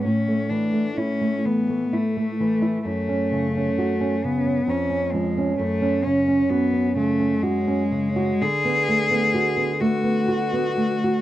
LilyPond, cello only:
\new Staff \with { instrumentName = "Cello" } { \time 3/4 \key fis \minor \tempo 4 = 65 cis'8 d'8 cis'8 b8 a4 | a4. b8 cis'8 gis8 | a8 cis'8 b8 a8 gis4 | gis'4. fis'4. | }